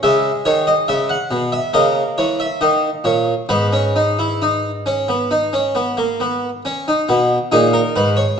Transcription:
0.03 0.29 C#3 medium
0.03 1.70 G#3 medium
0.03 0.29 E5 medium
0.45 0.72 D#3 medium
0.45 0.66 C#5 medium
0.67 0.87 D#5 medium
0.88 1.15 C#3 medium
0.88 1.09 E5 medium
1.09 1.36 F#5 medium
1.31 1.57 B2 medium
1.52 1.73 E5 medium
1.74 2.01 C#3 medium
1.74 3.46 A#3 medium
1.74 2.01 D#5 medium
2.18 2.45 E3 medium
2.18 2.38 C#5 medium
2.40 2.60 E5 medium
2.61 2.88 D#3 medium
2.61 2.88 D#5 medium
3.04 3.32 A#2 medium
3.04 3.33 C#5 medium
3.49 6.62 G#2 medium
3.49 3.71 B3 medium
3.49 6.62 B4 medium
3.73 3.95 C#4 medium
3.96 4.18 D#4 medium
4.19 4.40 E4 medium
4.42 4.69 D#4 medium
4.86 5.08 C#4 medium
5.08 5.30 B3 medium
5.31 5.53 D#4 medium
5.53 5.75 C#4 medium
5.75 5.97 B3 medium
5.97 6.20 A#3 medium
6.20 6.49 B3 medium
6.65 6.87 C#4 medium
6.88 7.10 D#4 medium
7.09 7.37 B2 medium
7.09 7.36 B3 medium
7.52 7.80 A#2 medium
7.52 8.40 D#4 medium
7.52 7.74 G#4 medium
7.73 7.96 A#4 medium
7.96 8.23 G#2 medium
7.96 8.18 B4 medium
8.17 8.40 C#5 medium

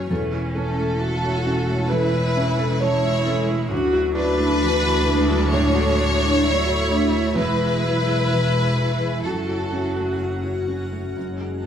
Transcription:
0.00 0.12 F#1 medium
0.00 0.12 C#3 soft
0.00 0.13 F#3 soft
0.00 0.13 C#4 soft
0.00 0.13 G#4 soft
0.00 0.12 B4 medium
0.00 0.10 C#5 medium
0.00 0.11 C#5 medium
0.00 0.13 C#5 medium
0.00 0.11 F#5 medium
0.10 3.72 E1 medium
0.10 1.87 E2 medium
0.10 1.88 E3 medium
0.10 1.02 C#4 medium
0.10 3.68 C#4 medium
0.10 3.70 E4 medium
0.10 0.24 A4 medium
0.10 3.69 E5 medium
0.33 0.70 E4 soft
0.33 0.47 C#5 soft
0.55 0.92 C#4 soft
0.55 1.87 A4 medium
0.55 1.88 A4 medium
0.55 0.70 A5 soft
0.79 1.51 A3 soft
0.79 0.93 A4 medium
1.01 1.92 F#4 medium
1.24 1.60 E4 medium
1.24 1.38 C#5 medium
1.47 1.82 C#4 soft
1.47 1.60 A4 medium
1.69 2.05 A3 medium
1.69 1.83 C#5 medium
1.90 2.82 E3 medium
1.90 2.28 E3 medium
1.90 2.81 E4 medium
1.90 2.05 A4 medium
1.90 2.77 B4 medium
1.90 2.81 B4 medium
2.14 2.50 E4 medium
2.14 2.28 E5 medium
2.37 2.57 C#4 medium
2.37 2.51 E5 medium
2.59 3.25 C#4 medium
2.59 2.73 A4 loud
2.81 3.72 G#3 medium
2.81 3.69 E4 medium
2.81 3.67 C#5 medium
2.81 3.71 C#5 medium
2.81 2.95 A5 medium
3.04 3.40 E4 medium
3.04 3.18 E5 medium
3.26 3.62 C#4 medium
3.26 3.40 A4 medium
3.49 3.71 A3 medium
3.70 5.48 D2 medium
3.70 7.37 D2 medium
3.70 4.63 F#3 medium
3.70 3.84 D4 medium
3.70 9.25 E4 medium
3.70 7.35 F#4 medium
3.70 4.15 F#4 medium
3.70 9.20 E5 medium
3.93 4.07 F#4 medium
3.93 4.29 F#4 medium
4.15 6.45 D4 medium
4.15 4.52 E4 medium
4.15 5.48 B4 loud
4.15 4.29 D5 medium
4.38 5.11 A3 medium
4.38 4.52 D4 loud
4.61 5.09 E3 medium
4.83 5.20 F#4 medium
4.83 4.98 F#4 medium
5.06 6.46 G#3 medium
5.06 5.20 D4 medium
5.06 5.43 E4 medium
5.29 5.66 F#3 medium
5.29 5.43 F#4 medium
5.52 5.89 A2 medium
5.52 5.66 D4 medium
5.52 7.36 C#5 loud
5.52 7.32 C#5 loud
5.75 6.12 F#4 medium
5.75 5.89 A4 medium
5.98 6.35 E4 medium
5.98 6.12 A4 medium
6.21 6.94 A3 medium
6.21 6.35 D4 medium
6.44 6.90 F#3 medium
6.44 7.35 E4 medium
6.44 6.58 D5 medium
6.66 7.03 F#4 medium
6.66 6.81 A4 medium
6.89 7.38 A3 medium
6.89 7.03 D4 medium
6.89 7.26 E4 medium
7.12 7.36 A3 medium
7.35 9.26 E1 medium
7.35 9.21 E2 medium
7.35 7.85 G#3 medium
7.35 7.50 E4 medium
7.35 9.27 E4 medium
7.35 9.25 G#4 medium
7.35 9.20 B4 loud
7.35 9.21 B4 loud
7.59 7.73 G#4 medium
7.59 7.96 G#4 medium
7.82 8.31 F#3 medium
7.82 8.20 E4 medium
7.82 7.96 E5 medium
8.06 8.82 G#3 medium
8.06 8.20 E4 medium
8.30 9.26 E3 medium
8.53 8.91 G#4 soft
8.53 8.67 G#4 medium
8.77 8.91 E4 medium
8.77 9.15 E4 soft
9.01 9.25 G#3 soft
9.01 9.15 G#4 medium
9.24 11.15 F#1 medium
9.24 11.12 F#2 medium
9.24 10.95 F#3 soft
9.24 11.16 C#4 medium
9.24 11.16 F#4 medium
9.24 10.95 F#4 medium
9.24 9.39 F#4 medium
9.24 10.20 A4 medium
9.24 10.16 A4 medium
9.24 11.15 F#5 medium
9.49 9.87 F#4 soft
9.49 9.63 C#5 soft
9.73 10.11 C#4 soft
9.73 9.87 C#5 soft
9.96 10.73 A3 soft
9.96 10.11 F#4 medium
10.20 10.35 F#5 soft
10.43 10.82 F#4 soft
10.43 10.59 C#5 soft
10.68 11.06 C#4 soft
10.68 10.83 F#4 medium
10.92 11.16 A3 soft
11.16 11.66 F#1 medium
11.16 11.66 F#2 medium
11.16 11.66 G#3 medium
11.16 11.66 C#5 medium
11.16 11.66 F#5 medium
11.16 11.66 G#5 medium
11.41 11.66 G#4 soft
11.63 11.66 C#4 soft

